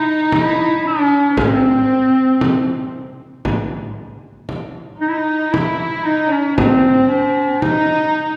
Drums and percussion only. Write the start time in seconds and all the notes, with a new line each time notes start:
0.32 frame drum
1.37 frame drum
2.41 frame drum
3.45 frame drum
4.49 frame drum
5.54 frame drum
6.58 frame drum
7.62 frame drum